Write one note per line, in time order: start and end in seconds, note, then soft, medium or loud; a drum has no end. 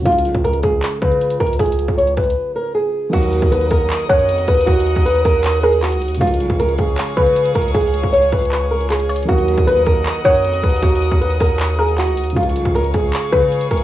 0.02 0.26 C#2 loud
0.02 3.07 C#3 medium
0.02 3.09 F3 medium
0.02 0.42 F4 loud
0.02 kick loud
0.02 closed hi-hat medium
0.07 3.10 G#3 medium
0.07 3.11 F4 medium
0.12 closed hi-hat medium
0.18 closed hi-hat medium
0.25 0.34 B1 loud
0.25 closed hi-hat medium
0.34 0.43 C#2 loud
0.34 kick medium
0.44 0.62 C#2 loud
0.44 0.60 A#4 medium
0.44 closed hi-hat medium
0.53 closed hi-hat medium
0.63 0.82 C#2 loud
0.63 0.99 G#4 medium
0.63 kick loud
0.63 closed hi-hat medium
0.82 clap loud
0.82 closed hi-hat medium
0.92 closed hi-hat soft
1.02 1.39 C#3 loud
1.02 1.38 B4 medium
1.02 kick medium
1.11 closed hi-hat medium
1.21 closed hi-hat medium
1.30 closed hi-hat medium
1.40 1.59 C#2 loud
1.40 1.56 A#4 medium
1.40 kick loud
1.40 closed hi-hat medium
1.47 closed hi-hat medium
1.53 closed hi-hat medium
1.59 1.87 C#2 loud
1.59 1.96 G#4 loud
1.59 kick loud
1.59 closed hi-hat medium
1.66 closed hi-hat medium
1.72 closed hi-hat medium
1.79 closed hi-hat medium
1.88 2.16 C#2 loud
1.88 kick medium
1.98 2.14 C#5 medium
1.98 closed hi-hat medium
2.07 closed hi-hat medium
2.17 2.36 C#2 loud
2.17 2.53 B4 medium
2.17 kick loud
2.17 closed hi-hat soft
2.17 open hi-hat medium
2.24 closed hi-hat medium
2.30 closed hi-hat medium
2.56 2.72 A#4 medium
2.75 3.11 G#4 medium
3.10 3.41 D#2 loud
3.10 6.15 D#3 medium
3.10 6.16 F#3 medium
3.10 3.49 F#4 loud
3.10 6.18 A#4 medium
3.10 6.18 D#5 medium
3.10 6.18 F#5 medium
3.10 6.18 D#6 medium
3.10 kick loud
3.10 closed hi-hat medium
3.10 crash loud
3.14 6.18 A#3 medium
3.14 6.19 F#4 medium
3.23 closed hi-hat medium
3.33 closed hi-hat medium
3.42 3.51 D#2 loud
3.42 kick loud
3.52 3.70 D#2 loud
3.52 3.68 B4 medium
3.52 closed hi-hat medium
3.61 closed hi-hat medium
3.71 3.89 D#2 loud
3.71 4.07 A#4 medium
3.71 kick loud
3.71 closed hi-hat medium
3.90 clap loud
3.90 closed hi-hat medium
3.99 closed hi-hat soft
4.09 4.30 F#2 loud
4.09 4.45 C#5 medium
4.09 4.28 F#5 medium
4.09 kick loud
4.19 closed hi-hat medium
4.29 4.47 F2 loud
4.29 closed hi-hat medium
4.38 closed hi-hat medium
4.48 4.66 D#2 loud
4.48 4.64 B4 medium
4.48 kick loud
4.48 closed hi-hat medium
4.54 closed hi-hat medium
4.61 closed hi-hat medium
4.66 4.95 D#2 loud
4.66 5.03 F#4 loud
4.66 kick loud
4.66 closed hi-hat medium
4.73 closed hi-hat medium
4.80 closed hi-hat medium
4.86 closed hi-hat medium
4.96 5.24 D#2 loud
4.96 kick loud
5.05 5.22 B4 medium
5.05 closed hi-hat medium
5.15 closed hi-hat medium
5.25 5.94 D#2 loud
5.25 5.61 A#4 medium
5.25 kick loud
5.25 open hi-hat medium
5.44 clap loud
5.44 closed hi-hat medium
5.53 closed hi-hat soft
5.63 5.79 G#4 medium
5.63 6.18 A#4 medium
5.73 closed hi-hat medium
5.83 6.19 F#4 medium
5.83 clap medium
5.83 closed hi-hat medium
5.92 6.08 C#2 loud
5.92 closed hi-hat medium
6.02 closed hi-hat medium
6.07 6.20 D#2 loud
6.07 closed hi-hat medium
6.15 9.23 C#3 medium
6.15 closed hi-hat medium
6.20 6.42 C#2 loud
6.20 9.24 F3 medium
6.20 9.25 G#3 medium
6.20 6.57 F4 loud
6.20 9.26 G#4 medium
6.20 9.26 C#5 medium
6.20 9.26 F5 medium
6.20 9.26 C#6 medium
6.20 kick loud
6.20 closed hi-hat medium
6.24 9.26 F4 medium
6.24 closed hi-hat medium
6.34 closed hi-hat medium
6.40 6.49 B1 loud
6.40 closed hi-hat medium
6.50 6.59 C#2 loud
6.50 kick medium
6.60 6.78 C#2 loud
6.60 6.76 A#4 medium
6.60 closed hi-hat medium
6.69 closed hi-hat medium
6.78 6.97 C#2 loud
6.78 7.15 G#4 medium
6.78 kick loud
6.78 closed hi-hat medium
6.98 clap loud
6.98 closed hi-hat medium
7.07 closed hi-hat medium
7.17 7.54 C#3 loud
7.17 7.53 B4 medium
7.17 7.35 B4 medium
7.17 kick medium
7.27 closed hi-hat medium
7.36 closed hi-hat medium
7.46 closed hi-hat medium
7.55 7.74 C#2 loud
7.55 7.71 A#4 medium
7.55 kick loud
7.55 closed hi-hat medium
7.62 closed hi-hat medium
7.68 closed hi-hat medium
7.75 8.02 C#2 loud
7.75 8.11 G#4 medium
7.75 kick loud
7.75 closed hi-hat medium
7.81 closed hi-hat medium
7.88 closed hi-hat medium
7.94 closed hi-hat medium
8.04 8.31 C#2 loud
8.04 kick loud
8.13 8.29 C#5 medium
8.13 closed hi-hat medium
8.22 closed hi-hat medium
8.32 9.25 C#2 loud
8.32 8.69 B4 medium
8.32 kick loud
8.32 closed hi-hat soft
8.32 open hi-hat medium
8.39 closed hi-hat medium
8.45 closed hi-hat medium
8.52 clap loud
8.52 closed hi-hat medium
8.61 closed hi-hat soft
8.71 8.87 A#4 medium
8.81 closed hi-hat medium
8.90 9.26 G#4 medium
8.90 clap medium
8.90 closed hi-hat medium
9.00 closed hi-hat medium
9.09 9.28 C#5 medium
9.09 closed hi-hat medium
9.16 closed hi-hat medium
9.22 12.30 D#3 medium
9.22 closed hi-hat medium
9.27 9.56 D#2 loud
9.27 12.32 F#3 medium
9.27 12.33 A#3 medium
9.27 9.65 F#4 loud
9.27 12.33 A#4 medium
9.27 12.33 D#5 medium
9.27 12.33 F#5 medium
9.27 12.33 D#6 medium
9.27 kick loud
9.27 closed hi-hat medium
9.32 12.34 F#4 medium
9.38 closed hi-hat medium
9.48 closed hi-hat medium
9.58 9.67 D#2 loud
9.58 kick medium
9.67 9.86 D#2 loud
9.67 9.83 B4 medium
9.67 closed hi-hat medium
9.76 closed hi-hat medium
9.86 10.05 D#2 loud
9.86 10.23 A#4 medium
9.86 kick loud
9.86 closed hi-hat medium
10.06 clap loud
10.06 closed hi-hat medium
10.15 closed hi-hat medium
10.25 10.46 F#2 loud
10.25 10.61 C#5 medium
10.25 10.43 F#5 medium
10.25 kick medium
10.34 closed hi-hat medium
10.44 10.62 F2 loud
10.44 closed hi-hat medium
10.53 closed hi-hat medium
10.63 10.82 D#2 loud
10.63 10.80 B4 medium
10.63 kick loud
10.63 closed hi-hat medium
10.70 closed hi-hat medium
10.76 closed hi-hat medium
10.82 11.10 D#2 loud
10.82 11.18 F#4 loud
10.82 kick loud
10.82 closed hi-hat medium
10.89 closed hi-hat medium
10.95 closed hi-hat medium
11.02 closed hi-hat medium
11.11 11.39 D#2 loud
11.11 kick loud
11.21 11.37 B4 medium
11.21 closed hi-hat medium
11.30 closed hi-hat medium
11.40 12.09 D#2 loud
11.40 11.77 A#4 medium
11.40 kick loud
11.40 open hi-hat medium
11.59 clap loud
11.59 closed hi-hat medium
11.69 closed hi-hat soft
11.79 11.95 G#4 medium
11.79 12.33 A#4 medium
11.88 closed hi-hat medium
11.98 12.34 F#4 medium
11.98 clap medium
11.98 closed hi-hat medium
12.07 12.23 C#2 loud
12.07 closed hi-hat medium
12.17 closed hi-hat medium
12.22 12.36 D#2 loud
12.22 closed hi-hat medium
12.30 13.84 C#3 medium
12.30 closed hi-hat medium
12.35 12.57 C#2 loud
12.35 13.84 F3 medium
12.35 13.84 G#3 medium
12.35 12.72 F4 loud
12.35 13.84 G#4 medium
12.35 13.84 C#5 medium
12.35 13.84 F5 medium
12.35 13.84 C#6 medium
12.35 kick loud
12.35 closed hi-hat medium
12.40 13.84 F4 medium
12.40 closed hi-hat medium
12.49 closed hi-hat medium
12.56 12.65 B1 loud
12.56 closed hi-hat medium
12.65 12.74 C#2 loud
12.65 kick medium
12.75 12.93 C#2 loud
12.75 12.91 A#4 medium
12.75 closed hi-hat medium
12.84 closed hi-hat medium
12.94 13.13 C#2 loud
12.94 13.30 G#4 medium
12.94 kick loud
12.94 closed hi-hat medium
13.13 clap loud
13.13 closed hi-hat medium
13.23 closed hi-hat soft
13.32 13.69 C#3 loud
13.32 13.69 B4 medium
13.32 13.51 B4 medium
13.32 kick medium
13.42 closed hi-hat medium
13.52 closed hi-hat medium
13.61 closed hi-hat medium
13.71 13.84 C#2 loud
13.71 13.84 A#4 medium
13.71 kick loud
13.71 closed hi-hat medium
13.77 closed hi-hat medium